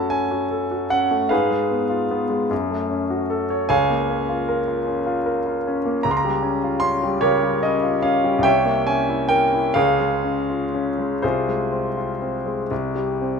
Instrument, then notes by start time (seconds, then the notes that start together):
grand piano
Already playing: F#2 A3 C#4 F#4 A4 C#5 F#5 A5 B5
0.10 C#4 G#5
0.31 F#4
0.51 A4
0.71 F#4
0.90 C#4 F#5
1.11 A3
1.29 G#2 G#4 B4 F5
1.51 G#3
1.70 B3
1.90 F4
2.11 B3
2.30 G#3
2.51 F#2
2.70 A3
2.90 C#4
3.10 F#4
3.30 A4
3.50 C#5
3.69 C#2 C#5 F5 G#5
3.90 A#3
4.11 C#4
4.29 F4
4.48 A#4
4.68 F4
4.87 C#4
5.07 F4
5.26 A#4
5.47 F4
5.67 C#4
5.86 A#3
6.03 C#2 A#5
6.11 C6
6.17 A#5
6.25 G3
6.42 C#4
6.64 F4
6.80 C#4 C6
7.04 G3
7.21 C#3 G4 A#4 C#5
7.43 G3
7.63 C#4 D#5
7.83 F4
8.03 C#4 F5
8.24 G3
8.39 C2
8.43 C#5 E5 G5
8.65 A#3
8.87 C#4 G#5
9.09 E4
9.29 A#4 G5
9.53 E4
9.74 C#2 G#4 C#5 F5
10.00 G#3
10.24 C#4
10.50 F4
10.74 C#4
10.99 G#3
11.22 C2 F4 G#4 C5
11.48 G#3
11.73 C4
11.97 F4
12.22 C4
12.46 G#3
12.71 C2
12.95 G3
13.21 C4